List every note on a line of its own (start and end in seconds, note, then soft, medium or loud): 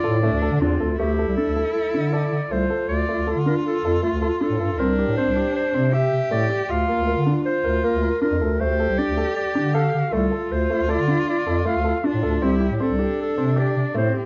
0.00 0.28 A2 medium
0.00 0.22 F4 medium
0.00 0.14 A4 medium
0.00 0.61 D5 medium
0.22 0.33 A3 medium
0.22 0.61 D4 medium
0.32 0.48 D2 medium
0.42 0.52 A4 medium
0.51 0.59 D3 medium
0.60 0.78 E2 medium
0.60 0.98 C4 medium
0.60 0.72 D4 medium
0.60 1.00 F4 medium
0.80 0.97 D2 medium
0.80 0.90 A4 medium
0.98 1.23 D2 medium
0.98 1.10 A3 medium
0.98 2.46 E4 medium
0.98 1.36 G4 medium
1.18 1.29 A4 medium
1.27 1.35 C2 medium
1.36 1.48 D4 medium
1.36 1.72 A4 medium
1.47 1.63 D2 medium
1.56 1.77 A4 medium
1.73 2.15 A4 medium
1.94 2.26 D3 medium
1.94 2.04 D4 medium
2.13 2.34 A4 medium
2.13 2.53 D5 medium
2.31 2.40 D3 medium
2.51 2.67 C2 medium
2.51 2.61 A3 medium
2.51 4.80 F4 medium
2.51 2.88 C5 medium
2.70 2.91 A4 medium
2.88 3.05 D2 medium
2.88 3.31 D5 medium
3.08 3.19 A3 medium
3.17 3.33 D2 medium
3.27 3.37 A4 medium
3.35 3.52 D3 medium
3.46 3.67 D4 medium
3.46 3.55 A#4 medium
3.67 4.01 A4 medium
3.83 4.00 F2 medium
3.83 3.95 A4 medium
4.03 4.13 A3 medium
4.03 4.44 F4 medium
4.12 4.28 D2 medium
4.22 4.32 A4 medium
4.41 4.51 D4 medium
4.41 4.81 A4 medium
4.50 4.58 A2 medium
4.60 4.80 G2 medium
4.60 4.70 A4 medium
4.78 5.03 C2 medium
4.78 4.90 C4 medium
4.78 5.94 D4 medium
4.78 5.16 A#4 medium
4.99 5.09 G4 medium
5.08 5.16 A2 medium
5.17 5.28 C4 medium
5.17 5.52 C5 medium
5.27 5.43 C2 medium
5.36 5.57 G4 medium
5.56 5.91 C5 medium
5.74 6.07 C3 medium
5.74 5.85 C4 medium
5.93 6.71 G4 medium
5.93 6.14 G4 medium
5.93 6.29 E5 medium
6.12 6.20 C3 medium
6.31 6.48 A2 medium
6.31 6.41 A3 medium
6.31 6.72 D5 medium
6.50 6.71 G4 medium
6.69 6.86 D2 medium
6.69 7.44 F4 medium
6.69 7.27 F5 medium
6.88 6.99 A#3 medium
6.98 7.14 D2 medium
7.07 7.18 A#4 medium
7.17 7.33 D3 medium
7.26 7.47 D4 medium
7.45 8.37 F4 medium
7.45 7.86 C5 medium
7.64 7.81 D2 medium
7.64 7.75 A#4 medium
7.83 7.94 A#3 medium
7.83 8.22 A#4 medium
7.94 8.10 D2 medium
8.02 8.13 A#4 medium
8.22 8.32 D4 medium
8.22 8.62 A#4 medium
8.32 8.40 F2 medium
8.41 8.58 D2 medium
8.41 8.52 A4 medium
8.59 8.85 D2 medium
8.59 8.71 A3 medium
8.59 10.08 G4 medium
8.59 9.00 C5 medium
8.80 8.90 A4 medium
8.89 8.97 C2 medium
8.98 9.09 D4 medium
8.98 9.36 D5 medium
9.08 9.24 D2 medium
9.17 9.38 A4 medium
9.36 9.76 D5 medium
9.55 9.88 D3 medium
9.55 9.66 D4 medium
9.74 9.95 A4 medium
9.74 10.14 F5 medium
9.94 10.02 D3 medium
10.13 10.29 C2 medium
10.13 10.23 A3 medium
10.13 12.00 F4 medium
10.13 10.54 A4 medium
10.31 10.52 A4 medium
10.51 10.67 D2 medium
10.51 10.91 C5 medium
10.70 10.80 A3 medium
10.80 10.96 D2 medium
10.88 10.99 A4 medium
10.88 11.28 D5 medium
10.99 11.15 D3 medium
11.08 11.29 D4 medium
11.29 11.64 D5 medium
11.47 11.63 F2 medium
11.47 11.57 A4 medium
11.65 11.76 A3 medium
11.65 12.07 F5 medium
11.76 11.92 D2 medium
11.84 11.95 A4 medium
12.04 12.14 D4 medium
12.04 12.44 D4 medium
12.04 12.46 F4 medium
12.14 12.22 A2 medium
12.23 12.44 D2 medium
12.23 12.33 A4 medium
12.42 12.67 C2 medium
12.42 12.52 C4 medium
12.42 12.80 E4 medium
12.42 12.84 G4 medium
12.61 12.71 G4 medium
12.71 12.79 A2 medium
12.80 12.90 C4 medium
12.80 13.97 D4 medium
12.80 13.19 A4 medium
12.90 13.06 C2 medium
12.99 13.20 G4 medium
13.22 13.60 A4 medium
13.37 13.70 C3 medium
13.37 13.48 C4 medium
13.56 13.77 G4 medium
13.56 13.96 D5 medium
13.76 13.84 C3 medium
13.94 14.11 A2 medium
13.94 14.05 A3 medium
13.94 14.26 C4 medium
13.94 14.14 C5 medium
14.14 14.26 G4 medium